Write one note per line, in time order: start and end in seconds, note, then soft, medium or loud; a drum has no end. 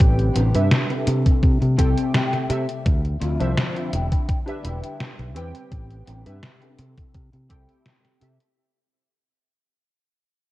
0.00 0.30 A1 medium
0.00 2.83 C3 medium
0.00 1.05 G3 medium
0.00 0.49 C4 medium
0.00 1.06 D4 medium
0.00 0.50 G4 medium
0.00 0.50 B4 medium
0.00 1.05 B4 medium
0.00 0.51 G5 loud
0.00 kick loud
0.00 closed hi-hat medium
0.19 closed hi-hat soft
0.35 0.51 A1 loud
0.35 0.63 B3 loud
0.35 0.63 C4 loud
0.35 0.63 D4 loud
0.35 0.63 G4 loud
0.35 closed hi-hat medium
0.55 0.68 G2 medium
0.55 1.05 G4 medium
0.55 1.05 B4 medium
0.55 1.06 E5 medium
0.55 closed hi-hat medium
0.71 snare loud
0.71 closed hi-hat medium
0.89 1.07 B3 medium
0.89 1.05 C4 medium
0.89 1.07 D4 medium
0.89 1.07 A4 medium
0.89 closed hi-hat soft
1.06 1.23 C3 loud
1.06 2.84 G3 medium
1.06 2.84 A3 medium
1.06 1.50 C4 medium
1.06 1.50 E4 medium
1.06 1.51 A4 loud
1.06 5.68 E5 medium
1.06 closed hi-hat loud
1.26 kick loud
1.26 closed hi-hat medium
1.43 1.58 C3 medium
1.43 kick loud
1.43 closed hi-hat medium
1.61 1.75 C3 medium
1.61 muted clean electric guitar stroke medium
1.61 closed hi-hat soft
1.77 1.94 C2 medium
1.77 2.23 C4 loud
1.77 2.46 C4 medium
1.77 2.24 E4 loud
1.77 2.46 G4 medium
1.77 2.46 A4 medium
1.77 2.24 C5 loud
1.77 2.46 G5 medium
1.77 2.12 A5 medium
1.77 kick loud
1.77 closed hi-hat medium
1.98 closed hi-hat medium
2.14 2.47 G5 medium
2.14 snare loud
2.14 closed hi-hat medium
2.33 snare soft
2.33 closed hi-hat soft
2.49 2.65 C3 loud
2.49 2.63 C4 medium
2.49 2.63 G4 medium
2.49 2.63 A4 medium
2.49 2.83 D5 medium
2.49 2.63 E5 medium
2.49 closed hi-hat medium
2.68 muted clean electric guitar stroke soft
2.68 closed hi-hat medium
2.86 3.15 D2 medium
2.86 5.69 D3 medium
2.86 3.92 F3 medium
2.86 3.92 C4 medium
2.86 kick loud
2.86 closed hi-hat medium
3.05 closed hi-hat soft
3.20 3.37 D2 medium
3.20 3.48 C4 loud
3.20 3.49 E4 loud
3.20 3.49 F4 loud
3.20 closed hi-hat medium
3.40 3.54 C2 medium
3.40 3.91 F3 medium
3.40 3.91 D4 medium
3.40 3.91 C5 medium
3.40 3.91 E5 medium
3.40 closed hi-hat soft
3.57 snare loud
3.57 closed hi-hat medium
3.75 3.91 C4 medium
3.75 3.91 E4 medium
3.75 3.93 F4 medium
3.75 closed hi-hat soft
3.92 4.08 E1 medium
3.92 8.53 G3 medium
3.92 4.36 D4 medium
3.92 4.36 E4 medium
3.92 4.36 G4 loud
3.92 6.76 B4 medium
3.92 closed hi-hat medium
4.12 kick loud
4.12 closed hi-hat soft
4.29 kick loud
4.29 closed hi-hat soft
4.46 5.31 D4 medium
4.46 5.31 G4 medium
4.46 5.32 B4 medium
4.46 5.32 E5 medium
4.46 muted clean electric guitar stroke medium
4.46 closed hi-hat soft
4.63 4.80 E1 medium
4.63 5.09 D4 loud
4.63 5.09 E4 loud
4.63 5.10 G4 loud
4.63 closed hi-hat medium
4.83 closed hi-hat soft
5.00 snare loud
5.00 closed hi-hat soft
5.19 5.36 B1 medium
5.19 closed hi-hat soft
5.34 5.51 E2 medium
5.34 6.21 C4 medium
5.34 6.21 G4 medium
5.34 6.22 B4 medium
5.34 6.22 G5 loud
5.34 closed hi-hat medium
5.53 muted clean electric guitar stroke soft
5.53 closed hi-hat soft
5.71 6.01 A1 medium
5.71 8.54 C3 medium
5.71 6.78 D4 medium
5.71 kick loud
5.71 closed hi-hat soft
5.90 closed hi-hat soft
6.06 6.23 A1 medium
6.06 6.34 B3 loud
6.06 6.34 C4 loud
6.06 6.35 D4 loud
6.06 6.35 G4 loud
6.06 closed hi-hat medium
6.26 6.40 G2 medium
6.26 6.76 G4 medium
6.26 6.77 B4 medium
6.26 6.77 E5 medium
6.26 closed hi-hat soft
6.43 snare loud
6.43 closed hi-hat soft
6.61 6.78 B3 medium
6.61 6.76 C4 medium
6.61 6.78 D4 medium
6.61 6.78 A4 medium
6.61 closed hi-hat soft
6.78 6.94 C3 medium
6.78 8.56 A3 medium
6.78 7.21 C4 medium
6.78 7.22 E4 medium
6.78 8.55 E4 medium
6.78 7.22 A4 loud
6.78 closed hi-hat medium
6.98 kick loud
6.98 closed hi-hat soft
7.14 7.30 C3 medium
7.14 kick loud
7.14 closed hi-hat soft
7.32 7.47 C3 medium
7.32 muted clean electric guitar stroke medium
7.32 closed hi-hat soft
7.49 7.65 C2 medium
7.49 7.95 C4 loud
7.49 8.17 C4 medium
7.49 7.95 E4 loud
7.49 8.17 G4 medium
7.49 8.18 A4 medium
7.49 7.96 C5 loud
7.49 8.18 G5 medium
7.49 kick loud
7.49 closed hi-hat medium
7.69 closed hi-hat soft
7.86 snare loud
7.86 closed hi-hat soft
8.05 snare soft
8.05 closed hi-hat soft
8.21 8.37 C3 medium
8.21 8.34 C4 medium
8.21 8.34 G4 medium
8.21 8.35 A4 medium
8.21 8.35 E5 medium
8.21 closed hi-hat medium
8.40 muted clean electric guitar stroke soft
8.40 closed hi-hat soft